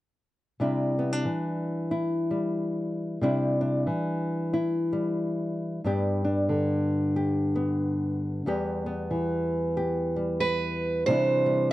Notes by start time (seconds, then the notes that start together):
0.60 C3 G3 D4 E4
0.99 B3
1.13 D4
1.25 E3
1.91 E4
2.31 G3
3.21 C3 G3 D4 E4
3.61 D4
3.87 E3
4.54 E4
4.93 G3
5.84 G2 B3 D4 G4
6.25 D4
6.49 D3
7.16 G4
7.56 B3
8.46 E2 G3 B3 G4
8.86 B3
9.11 E3
9.77 G4
10.16 G3
10.40 B4
11.06 C3 E3 G3 D4 C5
11.10 E4
11.46 G3